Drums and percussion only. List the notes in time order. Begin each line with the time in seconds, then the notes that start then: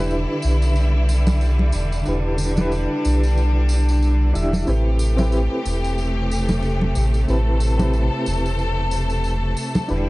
0.11 tambourine
0.42 tambourine
0.62 tambourine
0.76 tambourine
1.09 tambourine
1.27 tambourine, low conga
1.41 tambourine
1.59 low conga
1.72 tambourine
1.92 tambourine
2.06 tambourine
2.38 tambourine
2.57 tambourine, low conga
2.72 tambourine
3.05 tambourine
3.23 tambourine
3.37 tambourine
3.69 tambourine
3.89 tambourine
4.02 tambourine
4.35 tambourine
4.53 tambourine, low conga
4.67 tambourine
4.99 tambourine
5.18 tambourine, low conga
5.32 tambourine
5.66 tambourine
5.84 tambourine
5.98 tambourine
6.31 tambourine
6.49 tambourine, low conga
6.63 tambourine
6.81 low conga
6.95 tambourine
7.14 tambourine
7.28 tambourine
7.60 tambourine
7.79 tambourine, low conga
7.93 tambourine
8.26 tambourine
8.46 tambourine
8.59 tambourine
8.91 tambourine
9.10 tambourine
9.24 tambourine
9.57 tambourine
9.75 tambourine, low conga
9.89 tambourine